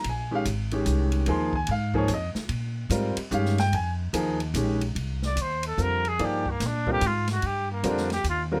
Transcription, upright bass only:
X:1
M:3/4
L:1/8
Q:"Swing" 1/4=146
K:Bbdor
V:1 name="Upright bass" clef=bass
B,,,2 A,,,2 C,,2 | E,,2 A,,2 F,, z | B,,2 A,, z G,,2 | F,,2 E,,2 B,,,2 |
[K:Cm] C,,2 E,,2 F,,2 | G,,2 B,,2 A,,2 | G,,2 F,,2 E,,2 |]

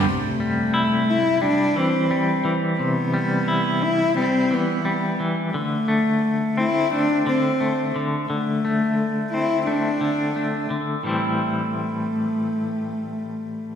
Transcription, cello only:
X:1
M:4/4
L:1/8
Q:1/4=87
K:C
V:1 name="Cello"
A,3 E D C2 z | B,3 E C B,2 z | A,3 E D C2 z | A,3 E D3 z |
A,8 |]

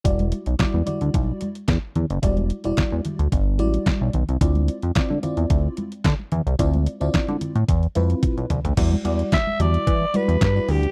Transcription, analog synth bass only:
X:1
M:4/4
L:1/16
Q:1/4=110
K:Ddor
V:1 name="Analog synth bass" clef=bass
E,,,3 B,,, z E,, z D,, B,,,2 z2 E,, z E,, ^F,,, | E,,,3 E,,, E,, E,, z D,, G,,,2 A,,,2 z B,,, B,,, C,, | D,,3 F,, D, D, z E,, D,,2 z2 D, z E,, C,, | D,,3 D,, D, D, z A,, E,,2 F,,2 z B,,, C,, D,, |
E,,2 E,,2 z2 E,,2 E,2 z E,, G,,2 D,,2 |]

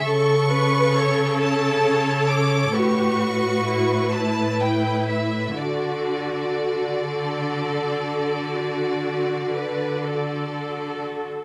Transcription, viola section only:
X:1
M:12/8
L:1/8
Q:3/8=41
K:D
V:1 name="Viola section"
A B A4 F3 E3 | F3 A3 F2 B A3 |]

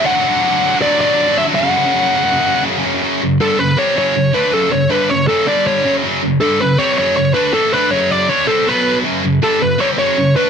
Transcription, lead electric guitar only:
X:1
M:4/4
L:1/16
Q:1/4=160
K:F#m
V:1 name="Lead electric guitar"
f8 d2 d4 e2 | f12 z4 | z4 A2 B2 c2 c4 B2 | A2 c2 B2 c2 A2 d2 c3 z |
z4 A2 B2 c2 c2 c2 B2 | A2 B2 c2 d2 c2 A2 B3 z | z4 A2 B2 c2 c4 B2 |]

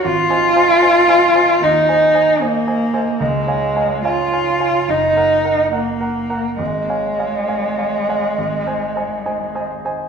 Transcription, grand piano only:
X:1
M:4/4
L:1/8
Q:1/4=71
K:Abmix
V:1 name="Grand piano"
(3A,,, [cea] [cea] (3[cea] [cea] [cea] (3E,, [cea] [cea] (3[cea] [cea] [cea] | (3D,, [dfa] [dfa] (3[dfa] [dfa] [dfa] (3G,,, [Bgb] [Bgb] (3[Bgb] [Bgb] [Bgb] | (3A,,, [dfa] [dfa] (3[dfa] [dfa] [dfa] (3A,,, [cea] [cea] (3[cea] [cea] [cea] |]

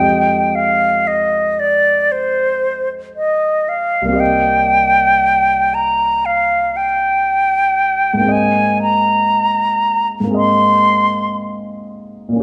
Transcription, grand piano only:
X:1
M:4/4
L:1/8
Q:1/4=58
K:Fm
V:1 name="Grand piano"
[F,,A,CGe]8 | [C,,B,CGe]8 | [A,,B,CAe]4 [A,,B,CAe]4 |]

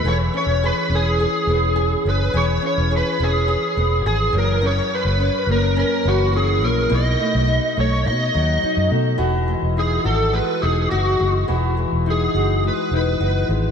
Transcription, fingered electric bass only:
X:1
M:4/4
L:1/16
Q:1/4=105
K:E
V:1 name="Fingered electric bass" clef=bass
E,,,2 z E,,,2 z E,,,3 z E,,,4 F,,,2 | E,,,2 z E,,,2 z E,,,3 z E,,,2 G,,,2 F,,,2- | F,,,2 z F,,,2 z F,,,3 z F,,,4 ^A,,,2 | B,,,2 z B,,,2 z B,,,2 B,,2 D,,2 z F,, B,,2 |
E,,,3 E,,,3 G,,,3 z E,,,2 F,,,2 F,,,2 | E,,,3 E,,,3 F,,,3 z E,,,2 F,,,2 G,,,2 |]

